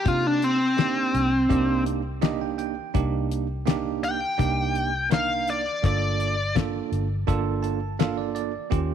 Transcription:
0.05 C3 A#3 D4 D#4 F4 G4, kick, closed hi-hat
0.27 D4
0.42 C4, closed hi-hat
0.77 A#3 D4 D#4 G4, snare, closed hi-hat
1.14 C2, closed hi-hat
1.49 C2 A#3 D4 D#4 G4, kick, closed hi-hat
1.86 closed hi-hat
2.21 A#3 D4 D#4 G4 D#5, snare, closed hi-hat
2.41 G5
2.58 G5, closed hi-hat
2.94 C2 A#3 D4 D#4 G4, kick, closed hi-hat
3.31 closed hi-hat
3.66 A#3 D4 D#4 G4, snare, closed hi-hat
4.04 G5, closed hi-hat
4.38 C2 A#3 D4 D#4 G4, kick, closed hi-hat
4.75 closed hi-hat
5.10 A#3 D4 D#4 A#4 F5, snare, closed hi-hat
5.47 D5, closed hi-hat
5.83 G1 A#3 D4 F4 A4 D5, kick, closed hi-hat
6.20 closed hi-hat
6.55 A#3 D4 F4 A4, kick, snare, closed hi-hat
6.92 G1, closed hi-hat
7.27 G1 A#3 D4 F4 A4, kick, closed hi-hat
7.63 A5, closed hi-hat
7.99 A#3 D4 F4 A4 F5, snare, closed hi-hat
8.18 D5
8.35 D5, closed hi-hat
8.70 D#2 A#3 C#4 F4 G4, kick, closed hi-hat

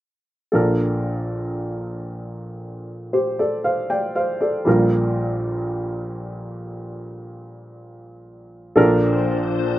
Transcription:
0.52 A#1 A#2 D4 A4 A#4
3.13 G4 C5
3.39 A4 D5
3.64 C5 F5
3.90 D5 G5
4.16 C5 F5
4.41 A4 D5
4.65 A#1 A#2 G3 F4 A#4
8.76 A#1 A#2 F3 A#3 D4 A4 A#4 C5

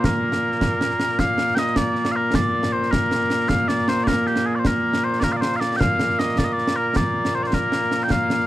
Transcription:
Already playing: A#2 A#3
0.04 A#4, concert bass drum, snare
0.32 snare
0.52 snare
0.61 concert bass drum, snare
0.81 snare
0.99 snare
1.09 snare
1.19 F5, concert bass drum, snare
1.38 snare
1.48 snare
1.55 D#5 G5, snare
1.66 snare
1.76 D5, concert bass drum, snare
1.95 snare
2.05 snare
2.12 F5
2.16 A#4
2.34 D5, concert bass drum, snare
2.63 snare
2.73 C5
2.83 snare
2.91 A#4, concert bass drum, snare
3.11 snare
3.21 snare
3.30 snare
3.40 snare
3.49 F5, concert bass drum, snare
3.68 D5, snare
3.88 C5, snare
3.98 snare
4.04 A#4 D5, concert bass drum, snare
4.26 G4, snare
4.36 snare
4.46 G#4
4.55 C5 D5
4.65 A#4, concert bass drum, snare
4.93 snare
5.04 C5
5.13 snare
5.20 A#4 D5, concert bass drum, snare
5.32 F5
5.37 D5
5.41 C5, snare
5.52 snare
5.56 D5 F5
5.61 snare
5.71 snare
5.76 F5 G5
5.81 concert bass drum, snare
5.99 snare
6.10 snare
6.19 D#5, snare
6.29 snare
6.38 D5, concert bass drum, snare
6.44 D#5
6.53 D5
6.58 snare
6.68 snare
6.76 A#4
6.96 D5, concert bass drum, snare
7.25 snare
7.35 C5
7.43 C5 D5, snare
7.53 A#4, concert bass drum, snare
7.72 snare
7.82 snare
7.91 snare
8.01 G5, snare
8.10 F5, concert bass drum, snare
8.30 snare
8.39 snare

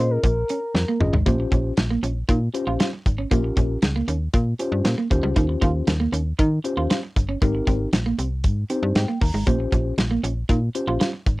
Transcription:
Already playing: A#2 C#4 F4 G#4 C5 D#5
0.11 A#4
0.23 A#1, kick, closed hi-hat
0.49 C#4, closed hi-hat
0.75 F2, snare
0.88 A#3
1.00 G1 C#4 F4 G#4 D#5, muted clean electric guitar stroke, mid tom
1.13 G#1 G#3, floor tom
1.26 A#1 A#3 C#4 F4 G4 C5, kick, closed hi-hat
1.40 muted clean electric guitar stroke
1.52 A#1 C#4, kick, closed hi-hat
1.77 A#1, muted clean electric guitar stroke, snare, closed hi-hat
1.91 A#3
2.03 A#1 C#4, closed hi-hat
2.29 A#2 D#4, kick, closed hi-hat
2.54 C#4 F4 G4 C5, muted clean electric guitar stroke, closed hi-hat
2.67 A#1 F4
2.80 F4, snare, closed hi-hat
2.93 muted clean electric guitar stroke
3.06 G#1, kick, closed hi-hat
3.18 C#4
3.31 A#1 A#3 C#4 F4 G4 A#4, kick, closed hi-hat
3.44 muted clean electric guitar stroke
3.57 A#1 C#4, kick, closed hi-hat
3.82 C#2, muted clean electric guitar stroke, snare, closed hi-hat
3.96 A#3
4.08 D#2 C#4, closed hi-hat
4.33 A#2, kick, closed hi-hat
4.59 C#4 F4 G4 C5, closed hi-hat
4.72 G2
4.85 A#2, snare, closed hi-hat
4.98 A#3
5.10 D#2 C#4 F4 G4 C5, muted clean electric guitar stroke, kick, closed hi-hat
5.23 C#2 G3
5.36 D#2 D#4, kick, closed hi-hat
5.49 muted clean electric guitar stroke
5.61 D#2 F4, kick, closed hi-hat
5.87 D#2, muted clean electric guitar stroke, snare, closed hi-hat
6.00 A#3
6.12 D#2 C#4, closed hi-hat
6.39 D#3 D#4, kick, closed hi-hat
6.64 C#4 F4 G4 C5, muted clean electric guitar stroke, closed hi-hat
6.77 D#2 F4
6.90 F4, snare, closed hi-hat
7.03 muted clean electric guitar stroke
7.16 G1, kick, closed hi-hat
7.29 C#4
7.42 G#1 G#3 C4 D#4 G4 A#4, kick, closed hi-hat
7.55 muted clean electric guitar stroke
7.67 G#1 C4, kick, closed hi-hat
7.93 A#1, muted clean electric guitar stroke, snare, closed hi-hat
8.06 A#3
8.18 C2 C4, closed hi-hat
8.44 G#2, kick, closed hi-hat
8.70 C4 D#4 G4 C5, closed hi-hat
8.83 G2
8.95 G#2 G5, snare, closed hi-hat
9.08 A#3
9.21 D#2 A#5, muted clean electric guitar stroke, kick, open hi-hat
9.34 G#1 G#3
9.46 A#1 A#3 C#4 F4 G4 C5, kick, closed hi-hat
9.60 muted clean electric guitar stroke
9.72 A#1 C#4, kick, closed hi-hat
9.98 A#1, muted clean electric guitar stroke, snare, closed hi-hat
10.11 A#3
10.23 A#1 C#4, closed hi-hat
10.49 A#2 D#4, kick, closed hi-hat
10.75 C#4 F4 G4 C5, muted clean electric guitar stroke, closed hi-hat
10.87 A#1 F4
11.00 F4, snare, closed hi-hat
11.13 muted clean electric guitar stroke
11.26 G#1, kick, closed hi-hat

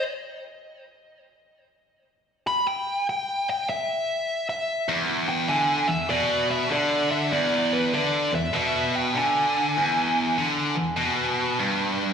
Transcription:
2.47 B5
2.67 G5
3.09 G5
3.50 G5
3.69 E5
4.49 E5
4.89 E2
5.29 G5
5.49 D3 G#5
5.88 E2 E5
6.10 B2 D5
6.51 E5
6.70 D3 D5
7.11 E5
7.32 E2 D5
7.73 B4
7.93 D3 D5
8.32 E2 E5
8.53 B2 E5
8.96 G5
9.15 D3 G#5
9.77 E2
10.38 D3
10.76 E2
10.97 B2
11.59 G2

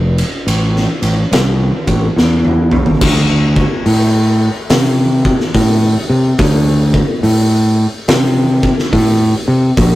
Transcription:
Already playing: F1
0.18 ride
0.47 A1, ride
0.76 snare
1.02 A1, ride
1.31 C2, snare, ride
1.87 A1, kick, ride
2.16 E2, snare
2.45 high tom
2.71 mid tom
2.86 floor tom
3.01 D2, kick, crash
3.56 kick
3.86 A2, open hi-hat
4.70 C3, snare, open hi-hat
5.25 kick
5.41 snare
5.54 A2, kick, open hi-hat
6.10 C3
6.38 D2, kick, open hi-hat
6.94 kick
7.23 A2, open hi-hat
8.08 C3, snare, open hi-hat
8.63 kick
8.79 snare
8.93 A2, kick, open hi-hat
9.48 C3
9.77 A#1, kick, open hi-hat

